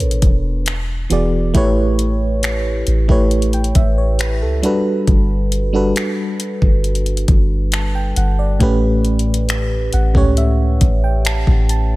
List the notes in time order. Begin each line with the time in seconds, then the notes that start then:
Already playing: B2 B3 D4 A4 A#4 B4 C#5
0.00 A1, closed hi-hat
0.11 closed hi-hat
0.22 E1, kick, closed hi-hat
0.66 finger snap, closed hi-hat
1.09 E1 E3 B3 F#4 G#4 D5, closed hi-hat
1.54 A1 A3 E4 G4 B4 C#5, kick, closed hi-hat
1.99 closed hi-hat
2.43 finger snap, closed hi-hat
2.87 A1, closed hi-hat
3.08 A1 A3 E4 G4 B4 C#5, kick
3.31 closed hi-hat
3.42 closed hi-hat
3.53 G5, closed hi-hat
3.64 closed hi-hat
3.75 A1 E5, kick, closed hi-hat
3.98 C#5
4.19 B4, finger snap, closed hi-hat
4.42 C#2 A4
4.62 G3 D4 F#4 A4 B4, closed hi-hat
5.07 G1, kick, closed hi-hat
5.52 closed hi-hat
5.73 G3 D4 F#4 A4 B4
5.96 finger snap, closed hi-hat
6.40 closed hi-hat
6.62 G1, kick
6.84 closed hi-hat
6.95 closed hi-hat
7.06 closed hi-hat
7.17 closed hi-hat
7.28 G1, kick, closed hi-hat
7.72 A5, finger snap, closed hi-hat
7.95 G5
8.16 G1 F#5, closed hi-hat
8.39 D5
8.59 A1 A2 A3 C#4 G4 B4, kick, closed hi-hat
9.05 closed hi-hat
9.19 closed hi-hat
9.34 closed hi-hat
9.49 finger snap, closed hi-hat
9.93 A1 F#5, closed hi-hat
10.14 C#2 A2 A3 C#4 G4 C#5, kick
10.37 E5, closed hi-hat
10.81 A1, kick, closed hi-hat
11.04 G5
11.25 A5, finger snap, closed hi-hat
11.47 A1, kick
11.69 A5, closed hi-hat